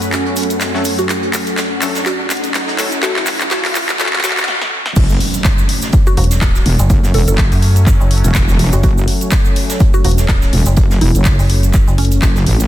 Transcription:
Already playing: analog synth pad F#2 F#3 A3 C#4, ambient pad C#4 A4 F#5, riser
0.02 closed hi-hat, cabasa
0.12 clap, closed hi-hat, cabasa
0.26 closed hi-hat
0.36 closed hi-hat, open hi-hat, cabasa
0.43 closed hi-hat
0.50 closed hi-hat, cabasa
0.60 snare, clap, closed hi-hat, cabasa
0.74 synth stab F#3 A3 C#4 A4, snare
0.85 closed hi-hat, open hi-hat, cabasa
0.99 synth pluck F#4, closed hi-hat, cabasa
1.09 synth pluck F#4, clap, closed hi-hat, cabasa
1.23 closed hi-hat
1.33 clap, closed hi-hat, open hi-hat, cabasa
1.47 closed hi-hat, cabasa
1.58 snare, clap, closed hi-hat, cabasa
1.82 synth stab F#3 A3 C#4 A4, clap, closed hi-hat, open hi-hat, cabasa
1.95 snare, closed hi-hat, cabasa
2.06 synth pluck F#4, clap, closed hi-hat, cabasa
2.30 clap, open hi-hat, cabasa
2.37 closed hi-hat
2.44 closed hi-hat, cabasa
2.54 snare, clap, closed hi-hat, cabasa
2.68 snare
2.79 synth stab F#3 A3 C#4 A4, clap, closed hi-hat, open hi-hat, cabasa
2.92 closed hi-hat, cabasa
3.03 synth stab F#3 A3 C#4 A4, synth pluck F#4, clap, closed hi-hat, cabasa
3.16 snare, clap
3.26 clap, closed hi-hat, open hi-hat, cabasa
3.40 clap, closed hi-hat, cabasa
3.50 synth stab F#3 A3 C#4 A4, synth pluck F#4, snare, clap, closed hi-hat, cabasa
3.65 clap, open hi-hat
3.75 clap, closed hi-hat, open hi-hat, cabasa
3.88 clap, closed hi-hat, cabasa
3.99 synth stab F#3 A3 C#4 A4, synth pluck F#4, clap, closed hi-hat, cabasa
4.06 clap
4.13 clap, closed hi-hat
4.19 clap
4.23 synth stab F#3 A3 C#4 A4, synth pluck F#4, clap, closed hi-hat, open hi-hat, cabasa
4.31 clap, closed hi-hat
4.37 clap, closed hi-hat, cabasa
4.43 clap
4.48 snare
4.61 snare
4.86 snare
4.96 wobble bass F#1, analog synth pad F#3 A3 C#4, kick, closed hi-hat, crash, impact, cabasa
5.09 closed hi-hat, cabasa
5.20 closed hi-hat, open hi-hat
5.34 closed hi-hat, cabasa
5.44 kick, snare, clap, closed hi-hat, cabasa
5.58 cabasa
5.69 closed hi-hat, open hi-hat
5.82 snare, closed hi-hat, cabasa
5.92 kick, closed hi-hat, cabasa
6.07 synth pluck F#4, cabasa
6.17 fm bass E1, synth pluck F#4, closed hi-hat, open hi-hat
6.24 closed hi-hat
6.31 snare, closed hi-hat, cabasa
6.41 kick, snare, clap, closed hi-hat, cabasa
6.55 snare, cabasa
6.65 wobble bass E1, closed hi-hat, open hi-hat
6.79 fm bass F#1, closed hi-hat, cabasa
6.90 wobble bass F#1, kick, closed hi-hat, cabasa
7.03 snare, cabasa
7.14 wobble bass E1, synth pluck A4, closed hi-hat, open hi-hat
7.27 wobble bass F#1, synth pluck A4, closed hi-hat, cabasa
7.37 kick, snare, clap, closed hi-hat, cabasa
7.52 fm bass F#2, open hi-hat, cabasa
7.62 closed hi-hat, open hi-hat
7.76 closed hi-hat, cabasa
7.86 kick, clap, closed hi-hat, cabasa
8.00 fm bass F#1, closed hi-hat, cabasa
8.10 closed hi-hat, open hi-hat
8.18 closed hi-hat
8.24 wobble bass E1, closed hi-hat, cabasa
8.34 kick, snare, clap, closed hi-hat, cabasa
8.49 snare, cabasa
8.59 closed hi-hat, open hi-hat
8.73 fm bass F#1, synth pluck F#4, closed hi-hat, cabasa
8.83 wobble bass F#1, synth pluck F#4, kick, closed hi-hat, cabasa
8.97 closed hi-hat, cabasa
9.08 closed hi-hat, open hi-hat
9.21 closed hi-hat, cabasa
9.31 kick, snare, clap, closed hi-hat, cabasa
9.45 cabasa
9.55 closed hi-hat, open hi-hat
9.69 snare, closed hi-hat, cabasa
9.80 kick, closed hi-hat, cabasa
9.94 synth pluck F#4, cabasa
10.04 fm bass E1, synth pluck F#4, closed hi-hat, open hi-hat
10.11 closed hi-hat
10.18 snare, closed hi-hat, cabasa
10.28 kick, snare, clap, closed hi-hat, cabasa
10.42 snare, cabasa
10.53 wobble bass E1, closed hi-hat, open hi-hat
10.66 fm bass F#1, closed hi-hat, cabasa
10.76 wobble bass F#1, kick, closed hi-hat, cabasa
10.90 snare, cabasa
11.01 wobble bass E1, synth pluck E4, closed hi-hat, open hi-hat
11.15 wobble bass F#1, closed hi-hat, cabasa
11.25 kick, snare, clap, closed hi-hat, cabasa
11.39 fm bass F#1, open hi-hat, cabasa
11.50 closed hi-hat, open hi-hat
11.63 closed hi-hat, cabasa
11.73 kick, clap, closed hi-hat, cabasa
11.87 fm bass F#1, closed hi-hat, cabasa
11.98 synth pluck C#4, closed hi-hat, open hi-hat
12.05 closed hi-hat
12.12 closed hi-hat, cabasa
12.22 wobble bass F#1, kick, snare, clap, closed hi-hat, cabasa
12.36 snare, cabasa
12.46 wobble bass A1, closed hi-hat, open hi-hat
12.60 closed hi-hat, cabasa

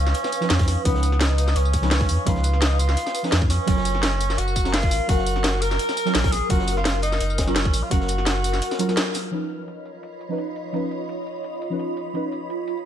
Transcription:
Already playing: sub bass C#2, synth stab F3 C#4 D#4 B4, tenor saxophone C#4, ambient pad B4 F5 D#6
0.07 snare, tambourine
0.14 closed hi-hat
0.24 snare, tambourine
0.32 closed hi-hat, tambourine
0.40 synth stab F3 C#4 D#4 B4, snare, tambourine
0.50 sub bass F2, snare, closed hi-hat
0.59 sub bass F2, kick, snare, closed hi-hat
0.68 sub bass F2, snare, closed hi-hat, open hi-hat, tambourine
0.84 sub bass C#2, synth stab F3 C#4 D#4 B4, tenor saxophone B3, kick, closed hi-hat
0.95 snare
1.03 closed hi-hat, tambourine
1.12 snare
1.21 tenor saxophone D#4, snare, closed hi-hat
1.38 closed hi-hat, tambourine
1.48 snare, tambourine
1.56 sub bass C#2, tenor saxophone C#4, closed hi-hat
1.65 tambourine
1.73 kick, closed hi-hat, tambourine
1.81 synth stab F3 C#4 D#4 B4, snare, tambourine
1.91 snare, closed hi-hat, open hi-hat
2.01 kick, snare
2.09 sub bass F2, closed hi-hat, open hi-hat, tambourine
2.25 sub bass C#2, synth stab F3 C#4 D#4 B4, tenor saxophone F4, kick, closed hi-hat
2.35 snare
2.44 closed hi-hat, tambourine
2.53 snare
2.62 tenor saxophone D#4, snare, closed hi-hat
2.79 tenor saxophone F4, closed hi-hat, tambourine
2.89 snare, tambourine
2.97 closed hi-hat
3.06 snare, tambourine
3.15 closed hi-hat, tambourine
3.23 synth stab F3 C#4 D#4 B4, snare, tambourine
3.32 sub bass F2, snare, closed hi-hat
3.42 sub bass F2, kick
3.50 sub bass F2, tenor saxophone C#4, snare, closed hi-hat, open hi-hat, tambourine
3.66 sub bass F#1, synth stab F#3 C#4 F4 A#4, ambient pad A#4 F6, kick, closed hi-hat
3.77 snare
3.85 closed hi-hat, tambourine
3.95 snare
4.03 snare, closed hi-hat
4.21 closed hi-hat, tambourine
4.30 snare, tambourine
4.38 sub bass F#1, tenor saxophone F#4, closed hi-hat
4.48 tambourine
4.56 kick, closed hi-hat, tambourine
4.64 synth stab F#3 C#4 F4 A#4, snare, tambourine
4.73 tenor saxophone F4, snare, closed hi-hat, open hi-hat
4.83 kick, snare
4.91 sub bass A#1, closed hi-hat, open hi-hat, tambourine
5.07 sub bass F#1, synth stab F#3 C#4 A#4 F5, tenor saxophone F#4, kick, closed hi-hat
5.18 snare
5.26 closed hi-hat, tambourine
5.36 snare
5.44 snare, closed hi-hat
5.62 tenor saxophone A#4, closed hi-hat, tambourine
5.71 snare, tambourine
5.79 closed hi-hat
5.89 snare, tambourine
5.97 closed hi-hat, tambourine
6.05 synth stab F#3 C#4 F4 A#4, snare, tambourine
6.15 sub bass A#1, snare, closed hi-hat
6.24 sub bass A#1, kick, snare, closed hi-hat
6.32 sub bass A#1, tenor saxophone G#4, snare, closed hi-hat, open hi-hat, tambourine
6.49 sub bass F#1, synth stab F#3 C#4 F4 A#4, tenor saxophone F#4, kick, closed hi-hat
6.59 snare
6.67 closed hi-hat, tambourine
6.77 tenor saxophone F4, snare
6.85 snare, closed hi-hat
7.02 tenor saxophone D#4, closed hi-hat, tambourine
7.12 snare, tambourine
7.20 sub bass F#1, closed hi-hat
7.30 tambourine
7.38 kick, snare, closed hi-hat, tambourine
7.46 synth stab F#3 C#4 F4 A#4, tenor saxophone C#4, snare, tambourine
7.56 snare, closed hi-hat
7.65 kick
7.73 sub bass A#1, closed hi-hat, open hi-hat, tambourine
7.83 tenor saxophone F4
7.90 sub bass F#1, synth stab F#3 C#4 A#4 F5, tenor saxophone F#4, kick, closed hi-hat
8.00 snare
8.08 closed hi-hat, tambourine
8.18 snare
8.26 snare, closed hi-hat
8.44 closed hi-hat, tambourine
8.54 snare, tambourine
8.62 closed hi-hat
8.71 snare, tambourine
8.79 synth stab F#3 C#4 F4 A#4, closed hi-hat, tambourine
8.87 synth stab F#3 C#4 F4 A#4, snare, tambourine
8.97 snare, closed hi-hat
9.14 snare, closed hi-hat, open hi-hat, tambourine
9.31 synth stab F3 C#4 D#4 B4, ambient pad F4 C#5 D#5 B5, closed hi-hat
9.50 closed hi-hat, tambourine
9.68 closed hi-hat
9.85 closed hi-hat, tambourine
9.95 tambourine
10.03 closed hi-hat
10.12 tambourine
10.21 closed hi-hat, tambourine
10.28 synth stab F3 C#4 D#4 B4, tambourine
10.38 closed hi-hat
10.56 closed hi-hat, tambourine
10.72 synth stab F3 C#4 D#4 B4, closed hi-hat
10.91 closed hi-hat, tambourine
11.09 closed hi-hat
11.26 closed hi-hat, tambourine
11.36 tambourine
11.44 closed hi-hat
11.53 tambourine
11.62 closed hi-hat, tambourine
11.70 synth stab F3 C#4 D#4 B4, tambourine
11.79 closed hi-hat
11.97 closed hi-hat, tambourine
12.13 synth stab F3 C#4 D#4 B4, closed hi-hat
12.32 closed hi-hat, tambourine
12.50 closed hi-hat
12.68 closed hi-hat, tambourine
12.77 tambourine

